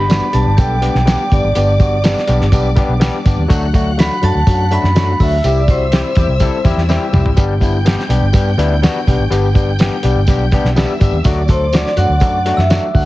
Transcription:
Already playing: G1 D5 B5 D6 B6
0.08 G3 B3 D4 F#4, snare, closed hi-hat, tambourine
0.33 B1 G3 B3 D4 G4 A5 A6, closed hi-hat, tambourine
0.46 G1
0.57 B1 G3 B3 D4 A4 G5 G6, kick, closed hi-hat, tambourine
0.81 G3 B3 D4 G4, closed hi-hat, tambourine
0.95 B1, snare
1.06 G3 B3 D4 G4, snare, closed hi-hat, tambourine
1.30 G1 G3 B3 D4 G4 D5 D6, kick, closed hi-hat, tambourine
1.44 G#1
1.55 G1 G3 B3 D4 G4, closed hi-hat, tambourine
1.79 G3 B3 D4 F#4, kick, closed hi-hat, tambourine
2.03 G3 B3 D4 G4, snare, closed hi-hat, tambourine
2.18 snare
2.27 B1 G3 B3 D4 G4, closed hi-hat, tambourine
2.41 G1, snare
2.52 B1 G3 B3 D4 G4, kick, closed hi-hat, tambourine
2.76 G3 B3 D4 G4, kick, closed hi-hat, tambourine
2.89 B1
3.00 G3 B3 D4 G4, snare, closed hi-hat, tambourine
3.25 G1 G3 B3 D4 G4, kick, closed hi-hat, tambourine
3.37 D#2
3.48 D2 F#3 A3 D4 F#4 F#5 F#6, kick, closed hi-hat, tambourine
3.73 F#3 A3 D4 F#4, kick, closed hi-hat, tambourine
3.97 F#3 A3 D4 F#4 B5 B6, snare, closed hi-hat, tambourine
4.22 F#2 F#3 A3 D4 F#4 A5 A6, closed hi-hat, tambourine
4.35 D2
4.47 F#2 F#3 A3 D4 F#4, kick, closed hi-hat, tambourine
4.70 F#3 A3 D4 F#4 B5 B6, closed hi-hat, tambourine
4.83 F#2, snare
4.95 F#3 A3 D4 F#4, snare, closed hi-hat, tambourine
5.20 D2 F#3 A3 D4 F#4 E5 E6, kick, open hi-hat, tambourine
5.43 C2 G3 C4 E4 G4 E5 E6, closed hi-hat, tambourine
5.57 D5 D6
5.68 G3 C4 E4 F#4 C5 C6, kick, closed hi-hat, tambourine
5.92 E3 G3 C4 E4 G4, snare, closed hi-hat, tambourine
6.15 E2 E3 G3 C4 E4 G4, kick, closed hi-hat, tambourine
6.28 C2
6.40 E3 G3 C4 E4 G4 A4, kick, closed hi-hat, tambourine
6.64 E2 G3 C4 E4 G4, kick, closed hi-hat, tambourine
6.76 E2, snare
6.88 E3 G3 C4 E4 G4, snare, tambourine
7.13 C2 G3 C4 E4 G4, mid tom, tambourine
7.25 G#1, floor tom
7.37 G1 G3 B3 D4 G4 G5 G6, kick, closed hi-hat, tambourine
7.60 G3 B3 D4 E4, kick, closed hi-hat, tambourine
7.85 G3 B3 D4 G4, snare, closed hi-hat, tambourine
8.00 snare
8.09 B1 G3 B3 D4 G4, closed hi-hat, tambourine
8.21 G1
8.33 G2 G3 B3 D4 G4, kick, closed hi-hat, tambourine
8.57 D2 G3 B3 D4 E4, closed hi-hat, tambourine
8.82 G3 B3 D4 F#4, snare, closed hi-hat, tambourine
9.07 B1 G3 B3 D4 G4, kick, closed hi-hat, tambourine
9.18 G#1
9.30 G1 G3 B3 D4 G4, closed hi-hat, tambourine
9.54 G3 B3 D4 G4, kick, closed hi-hat, tambourine
9.79 G3 B3 D4 G4, snare, closed hi-hat, tambourine
10.03 B1 G3 B3 D4 G4, closed hi-hat, tambourine
10.15 G1
10.27 B1 G3 B3 D4 G4, kick, closed hi-hat, tambourine
10.51 G3 B3 D4 G4, kick, closed hi-hat, tambourine
10.64 B1, snare
10.76 G3 B3 D4 G4 E5 E6, snare, closed hi-hat, tambourine
11.00 G1 G3 B3 D4 G4, kick, closed hi-hat, tambourine
11.12 D#2
11.24 D2 F#3 A3 D4 F#4 D5 D6, kick, closed hi-hat, tambourine
11.48 F#3 A3 D4 A4 C5 C6, kick, closed hi-hat, tambourine
11.72 F#3 A3 D4 F#4 D5 D6, snare, closed hi-hat, tambourine
11.86 snare
11.97 F#2 F#3 A3 D4 F#4 F#5 F#6, closed hi-hat, tambourine
12.09 D2
12.20 F#2 F#3 A3 D4 F#4, kick, closed hi-hat, tambourine
12.45 F#3 A3 D4 F#4, closed hi-hat, tambourine
12.57 F#2 E5 E6, snare
12.69 F#3 A3 D4 F#4, snare, closed hi-hat, tambourine
12.94 D2 F#3 A3 D4 F#4 F#5 F#6, kick, open hi-hat, tambourine

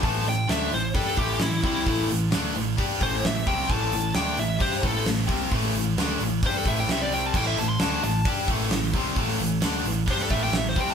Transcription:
0.03 A1 A2 E3 A3 A5, kick, open hi-hat
0.26 A1 A2 E3 G5, open hi-hat
0.49 D2 D3 A3 D4 E5, snare, open hi-hat
0.71 A1 A2 E3 C5, open hi-hat
0.94 G2 G3 D4 G4 A4, kick, open hi-hat
1.17 A1 A2 E3 A3 G4, kick, open hi-hat
1.39 A1 A2 E3 E4, snare, open hi-hat
1.63 C2 C3 G3 C4 E4, kick, open hi-hat
1.87 A1 A2 E3 A3, kick, open hi-hat
2.10 A1 A2 E3, open hi-hat
2.31 D2 D3 A3 D4, snare, open hi-hat
2.54 A1 A2 E3, open hi-hat
2.77 G2 G3 D4 G4, kick, open hi-hat
3.00 A1 A2 E3 A3 C5, kick, open hi-hat
3.24 A1 A2 E3 E5, snare, open hi-hat
3.46 C2 C3 G3 C4 G5, kick, open hi-hat
3.69 A1 A2 E3 A3 A5, kick, open hi-hat
3.92 A1 A2 E3, open hi-hat
4.14 D2 D3 A3 D4 G5, snare, open hi-hat
4.37 A1 A2 E3 E5, open hi-hat
4.59 G2 G3 D4 G4 C5, kick, open hi-hat
4.81 A1 A2 E3 A3, kick, open hi-hat
4.86 A4
5.05 A1 A2 E3, snare, open hi-hat
5.27 C2 C3 G3 C4, kick, open hi-hat
5.51 A1 A2 E3 A3, kick, open hi-hat
5.73 A1 A2 E3, open hi-hat
5.97 D2 D3 A3 D4, snare, open hi-hat
6.19 A1 A2 E3, open hi-hat
6.24 E3
6.43 G2 G3 D4 C5, kick, open hi-hat
6.48 G4
6.57 A4
6.65 A1 A2 E5, kick, open hi-hat
6.70 E3 A3
6.80 G5
6.87 C2 E5, snare, open hi-hat
6.92 C3 G3 C4
7.02 D5
7.12 G5, open hi-hat
7.26 A5
7.34 A1 A2 E3 G5, kick, crash
7.38 A3
7.47 E5
7.57 A1 A2 E3 A5, open hi-hat
7.69 C6
7.79 D2 D3 A3 A5, snare, open hi-hat
7.84 D4
8.03 A1 A2 E3 A5, open hi-hat
8.25 G2 G3 D4 G4, kick, open hi-hat
8.48 A1 A2 E3 A3, kick, open hi-hat
8.71 A1 A2 E3, snare, open hi-hat
8.93 C2 C3 G3, kick, open hi-hat
8.98 C4
9.16 A1 A2 E3 A3, kick, open hi-hat
9.40 A1 A2 E3, open hi-hat
9.62 D2 D3 A3 D4, snare, open hi-hat
9.84 A1 A2 E3, open hi-hat
10.08 G2 G3 D4 G4 C5, kick, open hi-hat
10.12 G4
10.21 A4
10.29 A1 A2 E3 E5, kick, open hi-hat
10.34 A2 E3 A3
10.44 G5
10.53 A1 A2 E3, snare, open hi-hat
10.58 E5
10.69 C5
10.76 C2 C3 G3 C4, kick, open hi-hat
10.80 G5
10.90 A5

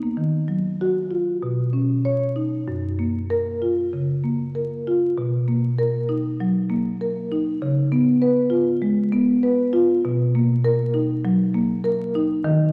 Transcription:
Already playing: D#4
0.03 A#3
0.17 D#3
0.48 F#3
0.81 F#4
1.11 F4
1.43 B2
1.73 C#4
2.05 C#5
2.36 D#4
2.68 F#2
2.99 A#3
3.30 A#4
3.62 F4
3.93 C#3
4.24 A#3
4.55 A#4
4.87 F4
5.18 B2
5.48 A#3
5.78 A#4
6.09 D#4
6.40 F#3
6.70 A#3
7.01 A#4
7.32 D#4
7.62 C#3
7.92 B3
8.22 B4
8.50 F4
8.82 G#3
9.12 B3
9.43 B4
9.73 F4
10.05 B2
10.35 A#3
10.65 A#4
10.94 D#4
11.25 F#3
11.54 A#3
11.84 A#4
12.15 D#4
12.44 D#3

